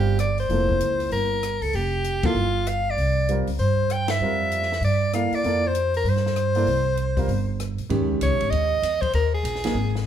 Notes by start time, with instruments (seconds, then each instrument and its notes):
Already playing: upright bass G1, upright piano G3 C4 F4 A#4, soprano saxophone G4
0.19 soprano saxophone D5, cross-stick, closed hi-hat
0.38 soprano saxophone C5, open hi-hat
0.49 upright bass F1, upright piano F3 A#3 E4 A4, open hi-hat
0.69 kick
0.80 upright bass C#2, closed hi-hat
1.00 open hi-hat
1.11 upright bass G1, soprano saxophone A#4, open hi-hat
1.43 cross-stick, closed hi-hat
1.61 upright bass C#2, soprano saxophone A4, open hi-hat
1.73 upright bass F1, soprano saxophone G4, open hi-hat
2.04 closed hi-hat
2.23 upright bass C#2, upright piano F3 A#3 E4 A4, soprano saxophone F4, kick, ride
2.34 upright bass G1
2.67 soprano saxophone F5, cross-stick, closed hi-hat
2.90 soprano saxophone D5
2.97 upright bass C2, open hi-hat
3.29 upright piano G3 C4 F4 A#4, closed hi-hat
3.47 upright bass C#2, open hi-hat
3.59 upright bass G2, soprano saxophone C5, open hi-hat
3.90 soprano saxophone G5, cross-stick, closed hi-hat
4.08 soprano saxophone E5, snare, ride
4.20 upright bass F2, upright piano G3 C4 F4 A#4
4.52 closed hi-hat
4.62 snare
4.72 snare
4.81 upright bass G2, soprano saxophone D5, open hi-hat
5.13 upright piano A#3 E4 A4 D5, soprano saxophone F5, cross-stick, closed hi-hat
5.32 soprano saxophone D5, muted upright bass stroke, open hi-hat
5.44 upright bass F2, upright piano A#3 E4 A4 D5, open hi-hat
5.67 soprano saxophone C5
5.75 closed hi-hat
5.94 soprano saxophone A#4, open hi-hat
6.04 upright bass G2, open hi-hat
6.09 soprano saxophone C5
6.16 snare
6.26 snare
6.36 cross-stick, closed hi-hat
6.55 upright piano A#3 E4 A4 D5, open hi-hat
6.66 upright bass C2, open hi-hat
6.97 closed hi-hat
7.17 upright piano G3 C4 F4 A#4, kick, open hi-hat
7.28 upright bass G1, open hi-hat
7.60 cross-stick, closed hi-hat
7.78 upright bass A#2, open hi-hat
7.89 upright bass G#2, upright piano D#3 G#3 C#4 G4, ride
8.00 upright bass D#2
8.11 upright bass C#2
8.21 upright bass C#2, soprano saxophone C#5, hi-hat pedal, ride
8.32 upright bass A#1
8.40 upright bass G#1, ride
8.50 upright bass D#2, soprano saxophone D#5, ride
8.82 upright bass E2, hi-hat pedal, ride
9.01 soprano saxophone C5, kick, ride
9.13 upright bass D#2, soprano saxophone A#4, ride
9.34 soprano saxophone G#4
9.43 upright bass A#1, hi-hat pedal, ride
9.55 snare
9.64 upright piano F3 A#3 D#4 G#4, snare, ride
9.74 upright bass G#1
9.95 snare